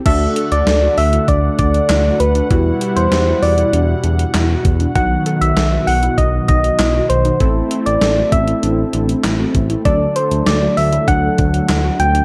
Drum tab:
CC |x---------------|----------------|----------------|----------------|
HH |x-xxx-oxx-xxx-xx|x-xxx-oxx-xxx-xx|x-xxx-oxx-xxx-xx|x-xxx-xxx-xxx-xx|
CP |------------x---|------------x---|------------x---|------------x---|
SD |----o-------o---|----o-------o---|----o-------o---|----o-------o---|
BD |o-------o-o-----|o-------------o-|o-------o-o-----|o-----o-------o-|

CC |----------------|
HH |x-xxx-oxx-xxx-xx|
CP |------------x---|
SD |----o-------o---|
BD |o-------o-o-----|